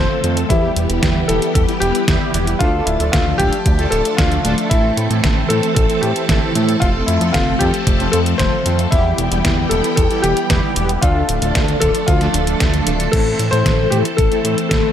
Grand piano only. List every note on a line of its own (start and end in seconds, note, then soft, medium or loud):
0.00 0.33 C5 loud
0.49 1.31 E4 loud
1.28 1.53 A4 medium
1.54 1.60 A4 medium
1.80 2.30 G4 loud
2.59 2.87 F4 loud
2.85 3.11 E4 medium
3.12 3.37 F4 medium
3.38 3.93 G4 loud
3.91 4.16 A4 loud
4.17 4.54 F4 medium
4.70 5.45 E4 loud
5.49 5.73 A4 medium
5.75 6.03 A4 loud
6.01 6.51 G4 medium
6.80 6.86 F4 loud
7.06 7.32 E4 medium
7.33 7.61 F4 medium
7.59 8.09 G4 loud
8.12 8.18 A4 loud
8.38 8.75 C5 loud
8.91 9.73 E4 loud
9.69 9.95 A4 medium
9.96 10.24 A4 loud
10.22 10.72 G4 loud
11.02 11.77 F4 medium
11.80 12.05 A4 loud
12.07 12.56 F4 medium
13.12 13.53 A4 loud
13.51 13.93 C5 loud
13.90 13.97 G4 medium
14.17 14.67 A4 loud
14.69 14.93 A4 medium